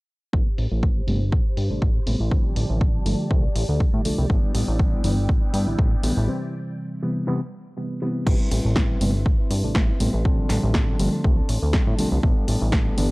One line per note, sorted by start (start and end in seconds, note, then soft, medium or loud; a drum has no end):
0.33 0.42 A1 medium
0.33 0.45 C3 medium
0.33 0.45 G3 medium
0.33 0.45 A3 medium
0.33 0.45 B3 medium
0.33 4.26 G4 medium
0.33 2.29 C5 medium
0.33 2.30 B5 medium
0.33 kick loud
0.58 0.67 A1 medium
0.58 open hi-hat loud
0.71 1.02 A1 loud
0.83 kick loud
1.07 1.34 G1 medium
1.07 1.19 C3 medium
1.07 1.20 G3 medium
1.07 1.20 A3 medium
1.07 1.20 B3 medium
1.07 open hi-hat medium
1.32 1.42 A1 medium
1.32 kick loud
1.57 1.70 G2 medium
1.57 open hi-hat medium
1.70 1.80 A1 soft
1.70 1.81 C3 medium
1.70 1.81 G3 medium
1.70 1.81 A3 medium
1.70 1.81 D4 medium
1.82 2.00 A1 medium
1.82 kick loud
2.06 2.16 A1 medium
2.06 2.19 C3 medium
2.06 2.19 G3 medium
2.06 2.19 A3 medium
2.06 2.19 B3 medium
2.06 open hi-hat medium
2.20 2.51 A1 medium
2.31 3.03 D3 medium
2.31 3.03 F3 medium
2.31 3.03 G3 medium
2.31 3.04 C4 loud
2.31 6.24 D5 medium
2.31 4.28 A5 medium
2.31 kick loud
2.56 2.66 A1 medium
2.56 open hi-hat loud
2.70 3.00 A1 loud
2.81 kick loud
3.06 3.15 G1 medium
3.06 3.28 D3 medium
3.06 3.28 F3 medium
3.06 3.28 G3 medium
3.06 3.28 A3 medium
3.06 open hi-hat medium
3.30 3.48 C2 loud
3.30 3.43 D3 medium
3.30 3.43 F3 medium
3.30 3.43 G3 medium
3.30 3.43 A3 loud
3.30 kick loud
3.56 3.65 A1 medium
3.56 open hi-hat loud
3.69 3.85 D2 medium
3.80 4.02 D3 medium
3.80 4.02 F3 medium
3.80 4.03 G3 medium
3.80 4.03 A3 medium
3.80 kick loud
3.94 4.01 A2 medium
4.05 4.16 C2 soft
4.05 4.27 D3 medium
4.05 4.27 F3 medium
4.05 4.27 G3 medium
4.05 4.28 A3 medium
4.05 open hi-hat medium
4.18 4.26 C2 medium
4.29 4.39 A1 loud
4.29 4.42 D3 medium
4.29 4.53 G3 medium
4.29 4.42 G3 medium
4.29 4.54 B3 medium
4.29 4.42 B3 medium
4.29 4.55 D4 medium
4.29 6.26 E4 medium
4.29 6.26 G5 medium
4.29 kick loud
4.54 4.64 A1 medium
4.54 4.68 G3 medium
4.54 4.68 B3 medium
4.54 4.66 D4 medium
4.54 open hi-hat loud
4.67 4.99 A1 loud
4.67 4.79 B3 soft
4.67 4.79 D4 medium
4.79 5.02 G3 medium
4.79 5.04 B3 medium
4.79 5.05 D4 medium
4.79 kick loud
5.04 5.30 G1 medium
5.04 5.16 D3 medium
5.04 5.16 E3 medium
5.04 5.42 G3 medium
5.04 5.16 G3 medium
5.04 5.17 B3 loud
5.04 5.43 B3 medium
5.04 5.41 D4 medium
5.04 open hi-hat medium
5.29 5.38 A1 medium
5.29 kick loud
5.42 5.53 B3 medium
5.42 5.54 D4 medium
5.53 5.67 G2 medium
5.53 5.67 G3 medium
5.53 5.68 B3 medium
5.53 5.65 D4 medium
5.53 open hi-hat loud
5.66 5.76 A1 soft
5.66 5.77 D3 medium
5.66 5.77 E3 medium
5.66 5.78 G3 medium
5.66 5.78 B3 soft
5.66 5.78 D4 medium
5.66 5.78 E4 medium
5.78 5.96 A1 medium
5.78 5.92 G3 medium
5.78 5.92 B3 medium
5.78 5.90 D4 medium
5.78 kick loud
5.91 6.03 B3 soft
5.91 6.03 D4 medium
6.03 6.13 A1 medium
6.03 6.15 D3 medium
6.03 6.15 E3 medium
6.03 6.28 G3 medium
6.03 6.16 G3 medium
6.03 6.16 B3 medium
6.03 6.29 B3 medium
6.03 6.29 D4 medium
6.03 open hi-hat medium
6.17 6.28 A1 medium
6.27 7.00 C3 medium
6.27 7.00 E3 medium
6.27 7.00 G3 medium
6.27 7.00 C4 loud
7.02 7.25 C3 medium
7.02 7.25 E3 medium
7.02 7.25 G3 medium
7.02 7.25 B3 medium
7.27 7.39 C3 loud
7.27 7.39 E3 medium
7.27 7.40 G3 medium
7.27 7.40 B3 loud
7.77 7.99 C3 medium
7.77 7.99 E3 medium
7.77 7.99 G3 medium
7.77 7.99 B3 medium
8.02 8.24 C3 medium
8.02 8.24 E3 medium
8.02 8.24 G3 medium
8.02 8.24 B3 medium
8.26 8.36 A1 loud
8.26 8.39 C3 medium
8.26 8.49 G3 medium
8.26 8.39 G3 medium
8.26 8.39 A3 medium
8.26 8.39 B3 medium
8.26 8.50 C4 medium
8.26 8.51 E4 medium
8.26 8.52 B4 medium
8.26 kick loud
8.26 crash medium
8.51 8.61 A1 medium
8.51 8.74 G3 medium
8.51 8.75 C4 medium
8.51 8.76 E4 medium
8.51 8.76 B4 medium
8.51 open hi-hat loud
8.65 8.95 A1 loud
8.76 8.99 G3 medium
8.76 9.00 C4 medium
8.76 9.01 E4 medium
8.76 9.02 B4 loud
8.76 kick loud
8.76 snare loud
9.00 9.27 G1 medium
9.00 9.13 C3 medium
9.00 9.14 G3 medium
9.00 9.13 G3 medium
9.00 9.13 A3 medium
9.00 9.13 B3 medium
9.00 9.15 C4 medium
9.00 9.14 E4 medium
9.00 9.13 B4 medium
9.00 open hi-hat medium
9.14 9.40 C4 soft
9.14 9.39 E4 medium
9.14 9.37 B4 medium
9.26 9.35 A1 medium
9.26 kick loud
9.39 9.74 C4 soft
9.39 9.75 E4 medium
9.39 9.75 B4 medium
9.50 9.63 G2 medium
9.50 open hi-hat loud
9.64 9.73 A1 soft
9.64 9.74 C3 medium
9.64 9.74 G3 medium
9.64 9.74 A3 medium
9.64 9.74 D4 loud
9.75 9.93 A1 medium
9.75 9.89 G3 medium
9.75 9.89 C4 medium
9.75 9.88 E4 loud
9.75 9.87 B4 loud
9.75 kick loud
9.75 snare loud
9.88 9.99 C4 soft
9.88 10.00 E4 medium
9.88 10.00 B4 medium
10.00 10.10 A1 medium
10.00 10.12 C3 medium
10.00 10.13 G3 medium
10.00 10.12 G3 medium
10.00 10.12 A3 medium
10.00 10.12 B3 medium
10.00 10.14 C4 medium
10.00 10.13 E4 medium
10.00 10.12 B4 medium
10.00 open hi-hat medium
10.13 10.44 A1 medium
10.13 10.24 C4 soft
10.13 10.25 E4 medium
10.13 10.25 B4 medium
10.24 10.96 D3 medium
10.24 10.97 F3 medium
10.24 10.48 G3 medium
10.24 10.97 G3 medium
10.24 10.49 C4 medium
10.24 10.97 C4 loud
10.24 10.50 D4 medium
10.24 10.51 A4 medium
10.24 kick loud
10.49 10.59 A1 medium
10.49 10.73 G3 medium
10.49 10.74 C4 medium
10.49 10.74 D4 medium
10.49 10.75 A4 medium
10.49 snare medium
10.49 open hi-hat loud
10.63 10.94 A1 loud
10.74 10.98 G3 medium
10.74 10.99 C4 medium
10.74 kick loud
10.74 snare loud
10.99 11.09 G1 loud
10.99 11.21 D3 medium
10.99 11.21 F3 medium
10.99 11.13 G3 medium
10.99 11.22 G3 medium
10.99 11.22 A3 medium
10.99 11.13 C4 medium
10.99 11.12 D4 medium
10.99 11.11 A4 medium
10.99 open hi-hat medium
11.12 11.38 C4 medium
11.12 11.37 D4 medium
11.12 11.36 A4 medium
11.24 11.42 C2 loud
11.24 11.36 D3 loud
11.24 11.36 F3 medium
11.24 11.36 G3 medium
11.24 11.36 A3 loud
11.24 kick loud
11.37 11.73 C4 medium
11.37 11.73 D4 medium
11.37 11.73 A4 medium
11.49 11.58 A1 medium
11.49 open hi-hat loud
11.62 11.79 D2 loud
11.73 11.96 D3 medium
11.73 11.96 F3 medium
11.73 11.87 G3 medium
11.73 11.96 G3 medium
11.73 11.96 A3 medium
11.73 11.87 C4 medium
11.73 11.87 D4 medium
11.73 11.85 A4 medium
11.73 kick loud
11.73 snare loud
11.86 11.95 A2 loud
11.86 11.98 C4 soft
11.86 11.98 D4 medium
11.86 11.98 A4 medium
11.98 12.09 C2 soft
11.98 12.21 D3 medium
11.98 12.21 F3 medium
11.98 12.12 G3 medium
11.98 12.21 G3 medium
11.98 12.21 A3 medium
11.98 12.12 C4 medium
11.98 12.11 D4 medium
11.98 12.10 A4 medium
11.98 open hi-hat medium
12.11 12.20 C2 medium
12.11 12.23 C4 medium
12.11 12.23 D4 medium
12.11 12.23 A4 medium
12.23 12.33 A1 loud
12.23 12.35 D3 medium
12.23 12.35 E3 medium
12.23 12.46 G3 medium
12.23 12.35 G3 medium
12.23 12.47 B3 medium
12.23 12.36 B3 loud
12.23 12.48 D4 loud
12.23 12.49 A4 medium
12.23 kick loud
12.47 12.57 A1 medium
12.47 12.71 G3 medium
12.47 12.72 B3 medium
12.47 12.72 D4 medium
12.47 12.73 A4 medium
12.47 open hi-hat loud
12.62 12.92 A1 loud
12.72 12.96 G3 medium
12.72 12.97 B3 medium
12.72 12.98 A4 loud
12.72 kick loud
12.72 snare loud
12.97 13.11 G1 medium
12.97 13.09 D3 medium
12.97 13.10 E3 medium
12.97 13.11 G3 medium
12.97 13.10 G3 medium
12.97 13.11 B3 medium
12.97 13.10 B3 loud
12.97 13.10 D4 medium
12.97 13.09 A4 medium
12.97 open hi-hat medium